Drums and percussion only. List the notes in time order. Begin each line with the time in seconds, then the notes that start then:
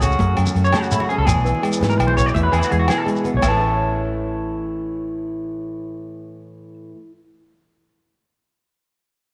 0.02 kick, closed hi-hat, shekere
0.11 shekere
0.19 kick, closed hi-hat, high conga
0.37 closed hi-hat, low conga, low agogo
0.46 low conga, shekere
0.56 closed hi-hat, low conga
0.65 shekere
0.73 snare, closed hi-hat, high conga, low conga, low agogo
0.82 low conga, shekere
0.92 closed hi-hat, shekere
1.00 low conga
1.10 closed hi-hat
1.27 kick, closed hi-hat, high conga, low conga, low agogo, shekere
1.36 low conga
1.46 closed hi-hat, shekere
1.55 low conga
1.63 closed hi-hat, low agogo
1.72 low conga, shekere
1.81 snare, closed hi-hat, high conga
1.90 shekere
2.00 closed hi-hat, low agogo
2.08 low conga
2.18 kick, closed hi-hat, shekere
2.28 shekere
2.35 kick, closed hi-hat, high conga, shekere
2.53 closed hi-hat, low agogo
2.61 low conga, shekere
2.71 closed hi-hat, high conga
2.88 snare, closed hi-hat, high conga, low agogo, shekere
3.07 closed hi-hat, low conga
3.16 shekere
3.24 closed hi-hat, low conga, shekere
3.42 kick, floor tom, crash, high conga, low agogo, shekere